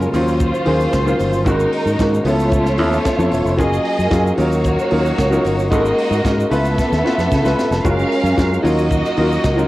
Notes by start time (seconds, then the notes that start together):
Already playing: C#3 F#3 G#3 A#3 C#4 F4 A#4
0.02 shaker
0.13 D#2 D#3 F3 A#3 C#4 F4 C5, open hi-hat, shaker
0.20 F#3
0.28 shaker
0.40 kick, closed hi-hat, shaker
0.54 shaker
0.65 D#2 D#3 F#3 A#3 C#4 G#4, open hi-hat
0.80 shaker
0.93 C#2, kick, snare, clap, shaker
1.06 D#3 F#3 A#3 C#4 F4, shaker
1.19 G1, open hi-hat, shaker
1.33 shaker
1.45 G#1 D#3 G#3 A#3 C#4 D#4 F#4 A#4, kick, closed hi-hat, shaker
1.60 shaker
1.73 open hi-hat
1.86 G#2, shaker
1.99 G#2 D#3 G#3 A#3 C#4 F#4, kick, snare, clap, closed hi-hat, shaker
2.14 shaker
2.24 C#2 F3 A3 B3 C#4 E4 F4 A4 C#5, open hi-hat, shaker
2.40 shaker
2.52 kick, closed hi-hat, shaker
2.65 snare, shaker
2.78 D#2 F3 B3 C#4 E4 A4, open hi-hat
2.93 shaker
3.05 kick, snare, clap, closed hi-hat, shaker
3.18 F2 F3 B3 C#4 E4 A4, shaker
3.32 E1, open hi-hat, shaker
3.45 F1, shaker
3.57 F#1 F#3 A#3 C#4 F4 G#4 D#5, kick, closed hi-hat, shaker
3.73 shaker
3.85 open hi-hat
3.99 F#2, shaker
4.10 F#2 F#3 A#3 C#4 F4 G#4, kick, snare, clap, closed hi-hat, shaker
4.27 shaker
4.37 D#2 F#3 A#3 C#4 D#4 F4 F#4 A#4 C#5, open hi-hat, shaker
4.52 shaker
4.64 kick, closed hi-hat, shaker
4.79 shaker
4.91 D#2 F#3 C#4 D#4 F4 A#4, open hi-hat
5.05 shaker
5.18 C#2, kick, snare, clap, shaker
5.31 F#3 C#4 D#4 F4 A#4, shaker
5.45 G1, open hi-hat, shaker
5.59 shaker
5.71 G#1 G#3 A#3 C#4 D#4 F#4 A4 D#5, kick, closed hi-hat, shaker
5.78 A#4
5.85 shaker
5.98 open hi-hat
6.11 G#2, shaker
6.24 G#2 G#3 C#4 D#4 F#4 A#4, kick, snare, clap, closed hi-hat, shaker
6.40 shaker
6.50 C#2 A3 B3 C#4 E4 F4 A4 B4 E5, open hi-hat, shaker
6.65 shaker
6.78 kick, snare, shaker
6.92 D#2, snare, shaker
7.04 A3 C#4 E4 F4 B4, snare
7.18 F2, snare, shaker
7.32 C#3, kick, snare, shaker
7.43 C#2 A3 C#4 E4 F4 B4, snare, shaker
7.59 snare, shaker
7.71 F1, snare, shaker
7.84 F#1 G#3 C#4 F4 F#4 A#4 F5, kick, closed hi-hat, shaker
7.99 shaker
8.12 open hi-hat
8.24 F#2, shaker
8.37 F#2 G#3 C#4 F4 F#4 A#4, kick, snare, clap, closed hi-hat, shaker
8.54 shaker
8.62 D#2 F#3 A#3 C#4 D#4 F4 F#4 A#4 D#5, open hi-hat
8.66 shaker
8.78 shaker
8.91 kick, closed hi-hat, shaker
9.05 snare, shaker
9.17 D#2 F#3 C#4 D#4 F4 A#4, open hi-hat
9.32 shaker
9.44 C#2, kick, snare, clap, closed hi-hat, shaker
9.56 F#3 C#4 D#4 F4 A#4, shaker